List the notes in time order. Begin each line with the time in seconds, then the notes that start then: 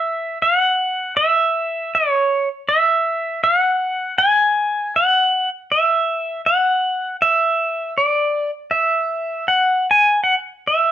Already playing: E5
0.42 F#5
1.17 E5
1.95 C#5
2.69 E5
3.44 F#5
4.18 G#5
4.96 F#5
5.72 E5
6.46 F#5
7.22 E5
7.98 D5
8.71 E5
9.48 F#5
9.91 G#5
10.24 F#5
10.67 E5